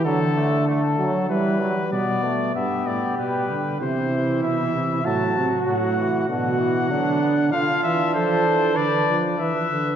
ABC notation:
X:1
M:4/4
L:1/8
Q:1/4=96
K:Gmix
V:1 name="Trumpet"
A2 A2 B2 d2 | e d B2 c2 e2 | a2 ^f2 f4 | [K:Ddor] f e c2 d z e2 |]
V:2 name="Flugelhorn"
z8 | G4 E4 | ^F4 F2 D2 | [K:Ddor] F2 A2 B z B2 |]
V:3 name="Trombone" clef=bass
^F, A, A, F, E, F, B, A, | B,2 G,2 E,4 | ^F,2 F, E, D, E, F, B, | [K:Ddor] D6- D z |]
V:4 name="Bass trombone" clef=bass
D,3 ^F, G,2 B,,2 | G,, A,, B,, D, C,2 B,, C, | A,, C, A,,2 B,,2 D,2 | [K:Ddor] D, E, F, E, D, F, E, D, |]